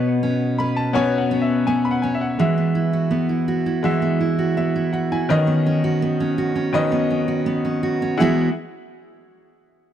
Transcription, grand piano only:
Already playing: B3 C#4 F#4 C#5
0.58 B5
0.77 A5
0.93 B3 C#4 F#4 C#5 G#5
1.18 F#5
1.42 E5
1.67 G#5
1.85 B5
1.91 F#5
2.02 G#5
2.15 E5
2.21 F#5
2.39 G#3 F#4 E5
3.83 G#3 F#4 E5
4.57 E5
4.93 F#5
5.12 G#5
5.29 D#3 C#4 B4 D#5
6.73 D#3 C#4 B4 D#5
8.17 E4 G#4 F#5

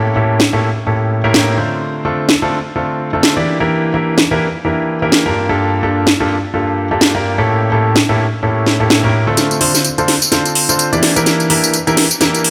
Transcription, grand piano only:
Already playing: A2 A#3 C#4 E4 G4 A4
0.16 A2 A#3 C#4 E4 G4 A4
0.53 A2 A#3 C#4 E4 G4 A4
0.87 A2 A#3 C#4 E4 G4 A4
1.24 A2 A#3 C#4 E4 G4 A#4
1.34 A2 A#3 C#4 E4 G4 A#4
1.58 D3 A3 C4 D4 F4 C5
2.05 D3 A3 C4 D4 F4 A4
2.42 D3 A3 C4 D4 F4 A4
2.76 D3 A3 C4 D4 F4 A4
3.13 D3 A3 C4 D4 F4 A4
3.37 E3 A#3 D4 E4 G4 D5
3.60 E3 A#3 D4 E4 G4 A#4
3.94 E3 A#3 D4 E4 G4 A#4
4.31 E3 A#3 D4 E4 G4 A#4
4.65 E3 A#3 D4 E4 G4 A#4
5.02 E3 A#3 D4 E4 G4 A#4
5.26 G2 A#3 D4 F4 G4 A#4
5.49 G2 A#3 D4 F4 G4 A4
5.83 G2 A#3 D4 F4 G4 A4
6.20 G2 A#3 D4 F4 G4 A4
6.54 G2 A#3 D4 F4 G4 A4
6.91 G2 A#3 D4 F4 G4 A4
7.15 G2 A#3 D4 F4 G4 A#4
7.38 A2 A#3 C#4 E4 G4 A4
7.72 A2 A#3 C#4 E4 G4 A4
8.09 A2 A#3 C#4 E4 G4 A4
8.43 A2 A#3 C#4 E4 G4 A4
8.80 A2 A#3 C#4 E4 G4 A4
9.04 A2 A#3 C#4 E4 G4 A#4
9.27 D3 A3 C4 D4 F4 A4
9.61 D3 C4 D4 F4 A4 C5
9.98 D3 C4 D4 F4 A4 C5
10.32 D3 C4 D4 F4 A4 C5
10.69 D3 C4 D4 F4 A4 C5
10.93 E3 A#3 D4 E4 G4 D5
11.16 E3 A#3 D4 E4 G4 A#4
11.50 E3 A#3 D4 E4 G4 A#4
11.87 E3 A#3 D4 E4 G4 A#4
12.21 E3 A#3 D4 E4 G4 A#4

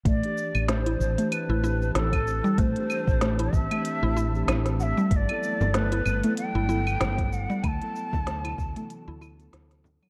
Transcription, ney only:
0.06 D5
0.69 C5
1.32 B4
1.96 A4
2.59 C5
3.53 E5
4.80 E5 F#5
5.11 E5
5.16 D5
5.74 B4
6.38 G5
7.32 F#5
7.63 A5 B5

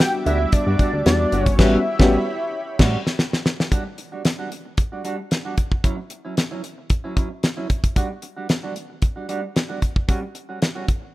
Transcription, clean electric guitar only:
0.14 muted clean electric guitar stroke
0.26 G3 D4 F#4
0.40 muted clean electric guitar stroke
0.53 muted clean electric guitar stroke
0.67 G3 D4 F#4
0.79 G3 D4 F#4
0.94 muted clean electric guitar stroke
1.20 muted clean electric guitar stroke
1.32 G3 D4 F#4
1.47 muted clean electric guitar stroke
1.59 G3 C#4 F#4
1.99 G3 C#4 G4
2.79 G3 C#4 F#4
3.71 G3 D4 F#4
3.85 muted clean electric guitar stroke
3.98 muted clean electric guitar stroke
4.12 G3 D4 F#4
4.39 G3 D4 F#4
4.51 muted clean electric guitar stroke
4.65 muted clean electric guitar stroke
4.78 muted clean electric guitar stroke
4.92 G3 D4 F#4
5.04 G3 D4 F#4
5.18 muted clean electric guitar stroke
5.31 muted clean electric guitar stroke
5.45 G3 D4 F#4
5.57 muted clean electric guitar stroke
5.72 muted clean electric guitar stroke
5.84 F#3 C#4 E4
5.98 muted clean electric guitar stroke
6.11 muted clean electric guitar stroke
6.25 F#3 C#4 E4
6.51 F#3 C#4 E4
6.64 muted clean electric guitar stroke
6.78 muted clean electric guitar stroke
6.90 muted clean electric guitar stroke
7.04 F#3 C#4 E4
7.17 F#3 C#4 E4
7.31 muted clean electric guitar stroke
7.43 muted clean electric guitar stroke
7.57 F#3 C#4 E4
7.70 muted clean electric guitar stroke
7.84 muted clean electric guitar stroke
7.96 G3 D4 F#4
8.10 muted clean electric guitar stroke
8.23 muted clean electric guitar stroke
8.37 G3 D4 F#4
8.63 G3 D4 F#4
8.76 muted clean electric guitar stroke
8.90 muted clean electric guitar stroke
9.02 muted clean electric guitar stroke
9.16 G3 D4 F#4
9.29 G3 D4 F#4
9.43 muted clean electric guitar stroke
9.55 muted clean electric guitar stroke
9.69 G3 D4 F#4
9.96 muted clean electric guitar stroke
10.08 G3 C#4 F#4
10.22 muted clean electric guitar stroke
10.35 muted clean electric guitar stroke
10.49 G3 C#4 F#4
10.61 muted clean electric guitar stroke
10.75 G3 C#4 F#4
10.88 muted clean electric guitar stroke
11.02 muted clean electric guitar stroke

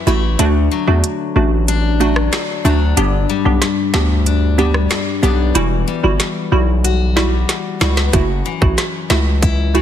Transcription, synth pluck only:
0.07 A3 E4 F#4
0.39 A3 D4 F#4
0.87 A3 D4 F#4
1.36 A3 D4 F#4
2.00 A3 D4 F#4
2.65 A3 D4 F#4
2.97 B3 D4 G4
3.45 B3 D4 G4
3.94 B3 D4 G4
4.58 B3 D4 G4
5.23 B3 D4 G4
5.55 G3 E4 F#4
6.03 G3 E4 F#4
6.52 G3 E4 F#4
7.16 G3 E4 F#4
7.81 G3 E4 F#4
8.13 A3 E4 F#4
8.61 A3 E4 F#4
9.10 A3 E4 F#4
9.74 A3 E4 F#4

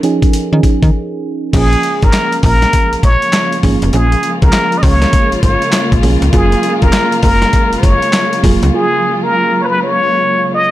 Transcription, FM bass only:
0.53 D#3
0.83 D#3
1.54 A#1
2.03 G#1
2.43 A#1
2.92 A#1
3.03 A#1
3.63 G#1
3.82 F1
3.93 A#1
4.42 C#2
4.83 C#2
5.32 G#1
5.43 G#1
5.92 A#1
6.03 B1
6.22 C#2
6.33 F#1
6.83 F1
7.23 F#1
7.72 F#1
7.83 F#1
8.44 F1
8.63 C#2

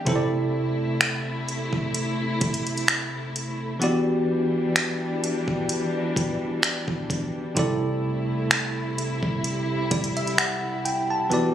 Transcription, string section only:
0.07 C3 A3 E4
3.81 E3 G3 D4
7.56 C3 A3 E4
9.44 G3
11.31 E3 G3 D4

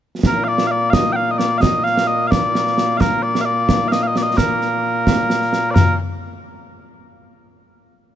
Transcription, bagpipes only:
0.27 A#2 A#3 A#4
0.44 D5 F5
0.67 F5
0.71 D5
0.90 D#5 F5
1.13 F5 G5
1.31 D#5
1.38 D5
1.58 D#5 F5
1.84 F5
2.07 D#5
2.27 D5 F5
2.97 A#4 F5
3.23 D5
3.41 F5
3.45 D5
3.88 F5
3.92 D#5
4.03 F5
4.07 D#5
4.17 D5
4.22 D#5
4.37 A#4
5.71 A#4 D5

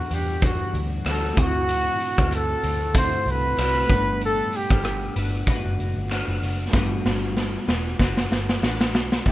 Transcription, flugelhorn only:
Already playing: F#4
0.14 G4
0.45 F#4
1.09 A4
1.40 F#4
2.35 A4
2.98 C5
3.31 B4
4.25 A4
4.56 G4
9.28 G4

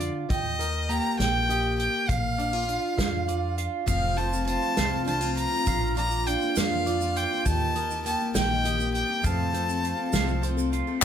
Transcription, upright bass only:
0.30 D#2
1.19 A#1
2.09 A#1
2.98 F2
3.88 F1
4.78 C2
5.67 A#1
6.57 F2
7.46 D#2
8.35 A#1
9.24 F2
10.13 C2

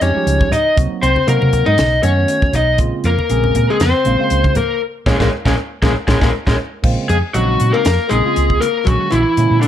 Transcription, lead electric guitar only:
0.02 C#5
0.53 D#5
1.03 C5
1.29 A#4
1.66 D#5
2.03 C#5
2.56 D#5
3.07 A#4
3.70 G#4
3.82 C5
4.57 A#4
5.07 G#4 A#4 C#5
5.21 G#4 A#4 C#5
5.46 G#4 A#4 C#5
5.83 G#4 A#4 C#5
6.08 G#4 A#4 C#5
6.22 G#4 A#4 C#5
6.47 G#4 A#4 C#5
7.10 G#4
7.34 F#4
7.73 A#4
8.10 G#4
8.60 A#4
8.87 F#4
9.12 E4
9.61 D4

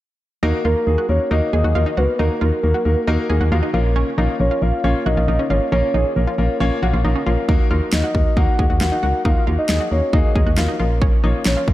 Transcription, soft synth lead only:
0.65 A#4
1.09 C#5
1.31 D#5
1.53 D#5
1.97 B4
2.19 A#4
2.41 A#4
4.40 C#5
4.62 F5
5.06 D#5
5.50 C#5
5.72 C#5
7.93 D#5
8.37 F#5
8.81 F#5
9.25 F5
9.58 D#5
9.92 C#5
10.14 D#5
10.58 F5
11.46 C#5
11.68 F5

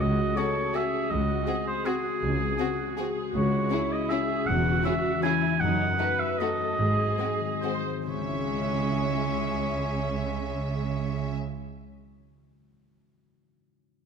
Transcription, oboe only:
0.00 D#5
0.37 C#5
0.75 E5
1.10 D#5
1.67 C5
1.86 G#4
3.35 C#5
3.92 D#5
4.10 E5
4.47 F#5
4.85 E5
5.23 G#5
5.60 F#5
6.19 E5
6.38 D#5
8.07 C#5

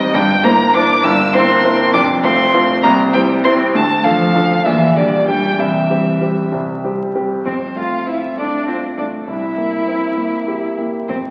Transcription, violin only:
Already playing: D#5
0.15 G5
0.44 A#5
0.74 D6
1.04 E6
1.33 C6
1.93 D6
2.23 C6
2.83 A#5
3.13 G5
3.44 C6
3.75 A5
4.05 F5
4.65 E5
4.96 D5
5.28 G5
5.59 E5
7.46 C5
7.76 F5
8.07 E5
8.38 D5
8.68 C5
8.98 D5
9.28 E5
11.08 C5

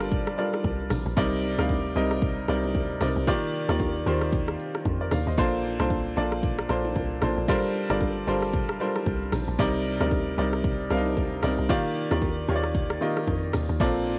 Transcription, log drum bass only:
Already playing: G1
0.64 C2
0.90 A#1
1.06 A#1
1.17 C2
1.58 D2
1.96 C2
2.49 C2
2.75 D2
3.01 C2
3.16 C2
3.69 D#2
4.06 D#2
4.85 F2
5.12 D#2
5.27 D#2
5.38 A#1
5.80 C2
6.17 A#1
6.70 A#1
6.96 C2
7.22 A#1
7.37 A#1
7.90 G1
8.27 G1
9.06 C2
9.33 A#1
9.48 A#1
9.59 C2
10.01 D2
10.38 C2
10.91 C2
11.17 D2
11.43 C2
11.59 C2
12.11 D#2
12.49 D#2
13.27 F2
13.54 D#2
13.69 D#2
13.80 A#1

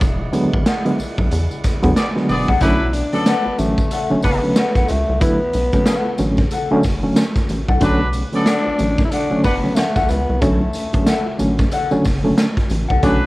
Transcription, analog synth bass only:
0.01 E1
0.54 G#1
0.99 B1
1.18 B1
1.32 E2
1.64 E2
1.84 E2
2.30 E1
2.49 C2
2.61 B1
3.46 A1
3.59 A1
4.11 F#1
4.25 F#1
4.75 B1
4.90 C#2
5.09 C2
5.54 B1
6.20 A1
6.72 F#1
6.85 F#1
7.50 A1
7.69 C2
7.82 B1
8.67 A1
8.80 A1
9.32 F#1
9.45 F#1
9.97 B1
10.10 C#2
10.29 C2
10.42 B1
10.94 A1
11.40 A1
11.93 F#1
12.06 F#1
12.71 A1
12.91 C2
13.03 B1

